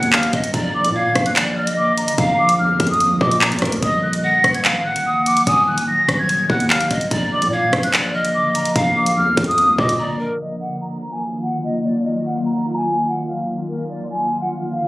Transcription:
Already playing: D#2 D#3 F#3 A#3 F#5
0.03 closed hi-hat
0.13 F5 F6, clap
0.23 closed hi-hat
0.33 D#1 D#5, kick, closed hi-hat
0.44 closed hi-hat
0.53 A#1 D3 F3 D5 A#5, kick, closed hi-hat
0.74 D6
0.85 A#2, closed hi-hat
0.95 F5 G#6
1.15 A#1, kick, cross-stick, closed hi-hat
1.26 F#6, closed hi-hat
1.36 D5, clap, closed hi-hat
1.57 D#5 F6
1.67 closed hi-hat
1.77 D6
1.98 A#5, closed hi-hat
2.08 closed hi-hat
2.18 A#1 F5 A#5, kick, closed hi-hat
2.39 D6
2.49 closed hi-hat
2.59 F2 F6
2.70 A#1
2.80 F2, kick, closed hi-hat
2.87 D#6, closed hi-hat
2.94 closed hi-hat
3.00 closed hi-hat
3.11 B1
3.21 A#2 D#5 D6, kick
3.31 closed hi-hat
3.41 D5 A#5, clap
3.52 D2, closed hi-hat
3.59 D2 A#4, kick, cross-stick, closed hi-hat
3.65 closed hi-hat
3.72 closed hi-hat
3.83 D#1 D#3 F#3 D#5 D#6, kick, closed hi-hat
4.03 F#6
4.13 closed hi-hat
4.23 F#5 A#6
4.44 D#1, kick, cross-stick, closed hi-hat
4.54 G#6, closed hi-hat
4.64 F5, clap, closed hi-hat
4.75 D1
4.85 F#5 F#6
4.91 D#1
4.96 closed hi-hat
5.06 D#6
5.26 D6, closed hi-hat
5.37 closed hi-hat
5.47 D#1 G#5 D#6, kick, closed hi-hat
5.68 F#6
5.78 D1, closed hi-hat
5.88 A#6
6.09 D#1, kick, cross-stick, closed hi-hat
6.19 G#6
6.29 closed hi-hat
6.50 D#2 F#5 F#6, kick
6.60 closed hi-hat
6.70 F5 F6, clap
6.81 closed hi-hat
6.91 D#1 D#5, kick, closed hi-hat
7.01 closed hi-hat
7.11 A#1 D3 F3 A#3 D5 A#5, kick, closed hi-hat
7.32 D6
7.42 A#2, closed hi-hat
7.53 F5 G#6
7.73 A#1, kick, cross-stick, closed hi-hat
7.83 F#6, closed hi-hat
7.94 D5, clap, closed hi-hat
8.14 D#5 F6
8.25 closed hi-hat
8.34 D6
8.55 A#5, closed hi-hat
8.65 closed hi-hat
8.76 A#1 F5 A#5, kick, closed hi-hat
8.96 D6
9.06 closed hi-hat
9.17 F2 F6
9.27 A#1
9.37 F2, kick, closed hi-hat
9.44 D#6, closed hi-hat
9.51 closed hi-hat
9.58 closed hi-hat
9.68 B1
9.78 A#2 D#5 D6, kick
9.89 closed hi-hat
9.99 D5 A#5
10.19 A#4
10.40 D#3 F#3 A#3 F4 D#5
10.60 F#5
10.81 A#5
11.12 G#5
11.42 F#5
11.64 D#5
11.84 D5
12.05 D#5
12.25 F#5
12.45 A#5
12.77 G#5
13.08 F#5
13.28 F5
13.69 D3 F3 F4 A#4
13.90 D5
14.10 G#5
14.41 F#5
14.72 F5

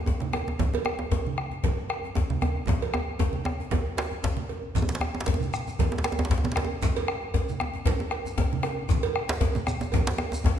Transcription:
0.06 bombo low, djembe slap, djembe tone, djembe bass
0.20 bombo rim, djembe slap, djembe tone, high conga
0.33 bombo rim, cowbell, djembe tone, high conga
0.47 bombo rim, high conga, djembe tone
0.59 bombo rim, bombo low, djembe slap, djembe tone, low conga, djembe bass
0.74 cowbell, djembe tone, high conga
0.85 bombo rim, djembe tone
0.99 djembe slap, djembe tone
1.11 bombo low, cowbell, djembe slap, djembe tone, djembe bass
1.26 djembe slap, high conga
1.38 bombo rim, djembe slap
1.51 djembe slap, djembe tone
1.64 bombo low, cowbell, djembe slap, high conga, djembe bass, low conga
1.78 bombo rim, djembe slap
1.89 bombo rim, cowbell
2.04 djembe tone
2.15 bombo low, djembe slap, djembe tone, djembe bass
2.30 bombo rim, djembe slap, djembe tone, high conga
2.41 bombo rim, cowbell, high conga, djembe tone, djembe bass
2.56 bombo rim, high conga
2.67 bombo low, djembe slap, djembe tone, low conga, djembe bass
2.82 cowbell, djembe slap, djembe tone
2.94 bombo rim, high conga, djembe tone
3.19 bombo rim, bombo low, cowbell, djembe slap, djembe tone, high conga, djembe bass
3.33 bombo rim, high conga
3.45 bombo rim, djembe slap, djembe tone
3.60 djembe tone
3.71 bombo low, cowbell, djembe slap, high conga, djembe tone, low conga, djembe bass
3.87 djembe slap
3.97 bombo rim, cowbell, djembe slap
4.11 djembe slap, djembe tone
4.24 bombo low, djembe slap, high conga, djembe bass
4.37 high conga
4.49 cowbell, djembe tone
4.63 high conga
4.75 bombo rim, bombo low, djembe slap, low conga, djembe bass, shekere
4.82 djembe tone
4.89 djembe slap, djembe tone, high conga, shekere
4.95 djembe slap
5.01 bombo rim, djembe tone
5.15 djembe slap, djembe tone
5.21 djembe slap
5.26 bombo low, cowbell, djembe slap
5.28 djembe slap, djembe tone, djembe bass
5.34 djembe tone
5.40 djembe slap, high conga, shekere
5.53 bombo rim, djembe slap, shekere
5.67 djembe slap, djembe tone, shekere
5.79 bombo low, cowbell, djembe slap, high conga, low conga, djembe bass, shekere
5.92 bombo rim, djembe slap, djembe tone
5.98 djembe slap
6.04 bombo rim, cowbell, djembe slap
6.12 djembe tone
6.19 djembe tone
6.25 djembe slap
6.30 bombo low, djembe slap, djembe bass
6.38 djembe tone
6.44 bombo rim, djembe slap, high conga, djembe tone
6.52 djembe slap
6.56 bombo rim, cowbell, djembe slap, high conga, djembe tone
6.64 djembe tone
6.70 bombo rim, high conga
6.82 bombo rim, bombo low, djembe slap, low conga, djembe bass, shekere
6.96 cowbell, djembe tone, high conga, shekere
7.08 bombo rim
7.23 djembe slap
7.34 bombo low, cowbell, djembe slap, djembe tone, djembe bass
7.49 djembe slap, high conga, shekere
7.60 bombo rim, djembe slap, djembe tone
7.74 djembe tone
7.86 bombo low, cowbell, djembe slap, high conga, djembe bass, low conga, shekere
7.99 bombo rim, djembe slap, djembe tone
8.11 bombo rim, cowbell
8.25 djembe tone, shekere
8.38 bombo low, djembe slap, djembe tone, djembe bass
8.52 bombo rim, djembe slap, high conga
8.63 bombo rim, cowbell, djembe tone, high conga
8.78 bombo rim, high conga
8.89 bombo rim, bombo low, djembe slap, djembe bass, low conga, shekere
9.03 cowbell, djembe tone, high conga
9.16 bombo rim
9.29 djembe slap
9.41 bombo low, cowbell, djembe slap, djembe tone, djembe bass
9.55 djembe slap, djembe tone, high conga, shekere
9.67 bombo rim, djembe slap, djembe tone, shekere
9.81 djembe slap, djembe tone, shekere
9.92 bombo low, cowbell, djembe slap, high conga, djembe bass, low conga, shekere
10.07 bombo rim, djembe slap
10.18 bombo rim, cowbell, djembe tone
10.32 djembe tone, shekere
10.34 djembe tone
10.44 bombo low, djembe slap, djembe tone, djembe bass

